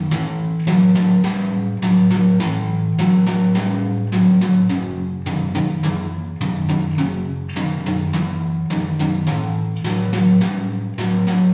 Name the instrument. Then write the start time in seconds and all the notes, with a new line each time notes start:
overdriven electric guitar
0.11 A2 E3
0.67 A2 F#3
0.96 A2 F#3
1.24 A2 G3
1.82 A2 F#3
2.11 A2 F#3
2.40 A2 E3
2.99 A2 F#3
3.26 A2 F#3
3.55 A2 G3
4.12 A2 F#3
4.41 A2 F#3
4.69 F#2 C#3
5.26 F#2 D#3
5.55 F#2 D#3
5.83 F#2 E3
6.41 F#2 D#3
6.69 F#2 D#3
6.98 F#2 C#3
7.56 F#2 D#3
7.86 F#2 D#3
8.13 F#2 E3
8.70 F#2 D#3
8.99 F#2 D#3
9.27 A2 E3
9.85 A2 F#3
10.13 A2 F#3
10.41 A2 G3
10.99 A2 F#3
11.27 A2 F#3